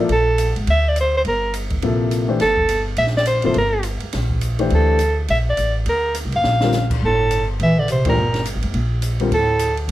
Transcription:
0.09 upright bass A#1, soprano saxophone A4, ride
0.38 hi-hat pedal, ride
0.56 upright bass G#1, ride
0.67 upright bass D2, soprano saxophone E5, ride
0.88 soprano saxophone D5
0.96 hi-hat pedal, ride
1.01 soprano saxophone C5
1.17 soprano saxophone C5
1.25 upright bass G1, soprano saxophone A#4, ride
1.54 hi-hat pedal, ride
1.70 kick, ride
1.82 upright bass A#1, grand piano C3 F3 A#3 E4 A4, ride
2.11 hi-hat pedal, ride
2.28 grand piano E3 A3 D4 G4 C5
2.40 upright bass G1, soprano saxophone A4, snare, ride
2.57 kick
2.69 hi-hat pedal, ride
2.97 upright bass A#1, soprano saxophone E5, ride
3.07 snare
3.17 soprano saxophone D5, snare
3.26 soprano saxophone C5, hi-hat pedal, ride
3.42 upright bass G#1, grand piano C3 F3 A#3 E4 A4, soprano saxophone C5, ride
3.54 upright bass G1, ride
3.58 soprano saxophone A#4
3.83 hi-hat pedal, ride
4.00 muted upright bass stroke, ride
4.13 upright bass A#1, snare, ride
4.30 kick
4.41 hi-hat pedal, ride
4.59 grand piano E3 A3 D4 G4 C5, ride
4.70 upright bass D2, ride
4.74 soprano saxophone A4
4.99 hi-hat pedal, ride
5.28 upright bass A#1, soprano saxophone E5, ride
5.50 soprano saxophone D5
5.57 upright bass A1, hi-hat pedal, ride
5.86 upright bass D2, soprano saxophone A#4, ride
6.15 hi-hat pedal, ride
6.25 upright bass C2
6.32 upright bass F#1, soprano saxophone F5, ride
6.44 upright bass A#1, snare
6.61 grand piano D3 G3 C4 F4 A#4, snare
6.72 snare, hi-hat pedal
6.90 kick, crash
7.02 upright bass G1, bass clarinet A2, soprano saxophone A4
7.31 hi-hat pedal, ride
7.60 upright bass A#1, bass clarinet E3, soprano saxophone E5, ride
7.78 bass clarinet D3, soprano saxophone D5
7.88 bass clarinet C3, soprano saxophone C5, hi-hat pedal, ride
8.05 upright bass G#1, bass clarinet A#2, grand piano E3 A3 D4 G4 C5, kick, ride
8.09 soprano saxophone A#4
8.17 upright bass G1
8.34 snare, ride
8.45 hi-hat pedal, ride
8.55 upright bass A1
8.63 upright bass F#1, ride
8.74 upright bass A#1, ride
9.02 hi-hat pedal, ride
9.20 grand piano D3 G3 C4 F4 A#4, ride
9.31 upright bass D2, bass clarinet A2, soprano saxophone A4, ride
9.59 hi-hat pedal, ride
9.77 ride
9.88 upright bass A#1

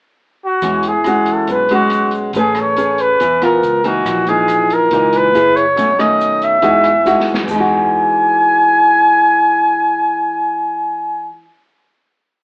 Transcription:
0.45 flugelhorn F#4
0.62 fingered electric bass E2, nylon-string guitar E3 G#3 C#4 F#4, kick, cross-stick, closed hi-hat, shaker
0.83 closed hi-hat, shaker
0.88 flugelhorn G#4
1.04 nylon-string guitar G#3 C#4 F#4, cross-stick, closed hi-hat, shaker
1.26 closed hi-hat, shaker
1.33 flugelhorn A4
1.48 fingered electric bass B1, nylon-string guitar B2, kick, closed hi-hat, shaker
1.52 flugelhorn B4
1.69 nylon-string guitar G#3 C#4 F#4, closed hi-hat, shaker
1.74 flugelhorn F#4
1.90 cross-stick, closed hi-hat, shaker
2.11 closed hi-hat, shaker
2.33 fingered electric bass A1, nylon-string guitar A3 C#4 G#4 B4, kick, closed hi-hat, shaker
2.38 flugelhorn G#4
2.55 cross-stick, closed hi-hat, shaker
2.60 flugelhorn C#5
2.76 nylon-string guitar C#4 G#4 B4, closed hi-hat, shaker
2.98 flugelhorn B4, closed hi-hat, shaker
3.20 fingered electric bass E2, nylon-string guitar E3, kick, closed hi-hat, shaker
3.42 nylon-string guitar B3 F4 A#4, flugelhorn A#4, cross-stick, closed hi-hat, shaker
3.63 fingered electric bass C#2, closed hi-hat, shaker
3.84 nylon-string guitar E3 A#3 D#4, flugelhorn F#4, closed hi-hat, shaker
4.05 fingered electric bass A#1, nylon-string guitar A#2, kick, cross-stick, closed hi-hat, shaker
4.27 nylon-string guitar E3 A#3 D#4, flugelhorn G#4, closed hi-hat, shaker
4.48 cross-stick, closed hi-hat, shaker
4.70 flugelhorn A#4, closed hi-hat, shaker
4.91 fingered electric bass C#2, nylon-string guitar A#2 E3 A#3 D#4, kick, closed hi-hat, shaker
5.13 flugelhorn B4, closed hi-hat, shaker
5.34 fingered electric bass F#1, nylon-string guitar A#3 E4 G#4, cross-stick, closed hi-hat, shaker
5.56 flugelhorn C#5, closed hi-hat, shaker
5.76 fingered electric bass B1, nylon-string guitar B2 D#3 A3 C#4, kick, closed hi-hat, shaker
5.98 nylon-string guitar D#3 A3 C#4, flugelhorn D#5, cross-stick, closed hi-hat, shaker
6.21 closed hi-hat, shaker
6.42 flugelhorn E5, closed hi-hat, shaker
6.62 fingered electric bass E2, nylon-string guitar E3 G#3 D#4 F#4, kick, closed hi-hat, shaker
6.84 cross-stick, closed hi-hat, shaker
7.05 nylon-string guitar G#3 D#4 F#4, snare, shaker
7.20 snare
7.27 shaker
7.34 snare
7.44 fingered electric bass E2, nylon-string guitar E3, kick, crash
7.48 nylon-string guitar G#3, flugelhorn G#5, shaker
7.55 nylon-string guitar D#4
7.60 nylon-string guitar F#4

